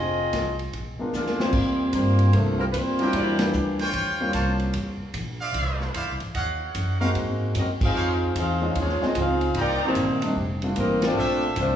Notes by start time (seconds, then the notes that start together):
Already playing: F1 C4 F4 G#4 D#5
0.33 C2, kick, snare, hi-hat pedal, ride
0.59 ride
0.73 A#1, kick, ride
0.99 G#3 B3 D4 F4 A#4, muted upright bass stroke
1.13 D2 D3 F3 G#3 A#3 D4 F4 A#4, snare, hi-hat pedal
1.26 snare
1.39 C3 G3 A#3 C4 F4 G4 C5, snare
1.53 D#2, kick, crash
1.91 G2 C3 G3 A#3 C4 F4 G4 C5, kick, hi-hat pedal, ride
2.19 ride
2.32 C2 F3 A3 A#3 D4 A4, kick, ride
2.58 C3 G3 A#3 C4 F4 A#4
2.70 D2 C3 G3 A#3 C4 F4 G4 B4 C5, kick, hi-hat pedal, ride
2.99 F#3 G3 A#3 D4 E4 A#4 D5 G5, ride
3.13 E2 G3 A#3 D4 E4 G4 D5, kick, ride
3.39 A#2 D3 E3 G3 A#3 D4 G4, snare, ride
3.53 D2, hi-hat pedal
3.79 F4 C5 C#5 G5, snare, ride
3.93 D#2, kick, ride
4.21 G3 A#3 C4 C#4 F4
4.33 C2 F4 C5 C#5 A5, kick, hi-hat pedal, ride
4.59 ride
4.73 D2, kick, ride
5.00 muted upright bass stroke
5.14 A#1, kick, hi-hat pedal, ride
5.40 C5 D5 E5 F5
5.54 C2, kick, ride
5.81 snare
5.94 D2 E4 C5 D5 F5, kick, hi-hat pedal, ride
6.08 C2
6.20 A1, ride
6.34 D#2 C#5 D#5 F5 F#5, kick, ride
6.75 F#2, kick, hi-hat pedal, ride
7.00 G#3 A#3 C4 D#4 F#4 A#4 C5 F5
7.15 G#2, kick, ride
7.55 F#2 F#3 C4 D#4 F#4 A#4 D#5, kick, hi-hat pedal, ride
7.81 G#3 C4 D#4 F4 G#4 C5 F5, muted upright bass stroke, kick, crash
7.95 F2 D#4 C5 C#5 F5
8.36 E2 G#3 C4 D#4 F4 G#4 C5 F5, kick, hi-hat pedal, ride
8.62 G#3 C4 C#4 D#4 F4
8.75 D#2 F3 G#3 C#4, kick, ride
8.80 D#4 F4 C#5
8.89 snare
9.01 G#3 C4 C#4 D#4 F4 G#4 D#5, muted upright bass stroke, snare
9.15 C#2 G#3 C4 F4, kick, hi-hat pedal, ride
9.19 D#4 G#4 C5 F5
9.41 ride
9.54 C2 D#4 C5 D5 A#5, kick, ride
9.59 A#3 D#4 G4 A#4 D5 G5
9.82 D#3 G3 A#3 C4 G4, muted upright bass stroke
9.87 D#4 C5
9.95 A#1, kick, hi-hat pedal, ride
10.22 G3 A3 C4 D4 D#4, ride
10.36 F1, kick
10.62 G3 A3 C4 D4 F4, ride
10.76 A1 G3 A#3 C4 D#4 A#4, kick, hi-hat pedal, ride
11.02 F3 A3 C4 D4 F4 C5, snare, ride
11.17 A#1 D4 A4 C5 E5
11.56 C2 F3 A3 C4 D4 F4 C5, kick, hi-hat pedal, ride